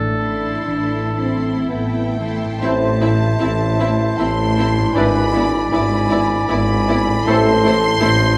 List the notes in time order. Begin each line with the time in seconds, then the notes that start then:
Already playing: A1 A2 A3 D4 E4 A4
0.17 C4 E4 A4 C6
0.65 A1 A2 E3 D4
1.16 C4 E4 A4 C6
1.69 A1 A2 B3 C4 E5 G5
2.19 E3 A3 E4 A4 C6
2.45 A2
2.49 C4
2.54 E4
2.59 A1 A2 C4 E4 C5 E5 A5
2.63 C4 E4
3.01 C4 E4 E5
3.39 A1 A2 C4 E4 E5
3.80 C4 E4 E5
4.17 A1 A2 C4 E4 E5 A5 C6
4.58 C4 E4 E5
4.77 G#2
4.82 D4
4.86 E4
4.91 B4 G#5
4.95 G#1 G#2 B3 D4 E4 B4 D5 B5
5.34 B3 E4 D5
5.70 G#1 G#2 B3 E4 D5 G#5 B5
6.10 B3 E4 D5
6.47 G#1 G#2 B3 E4 D5 G#5 B5
6.88 B3 E4 D5
7.08 A2
7.13 C4
7.18 E4 A4
7.26 A1 A2 A3 C4 E4 A4 C5 A5 C6
7.64 A3 E4 A4 C5
8.00 A1 A2 A3 E4 A4 C5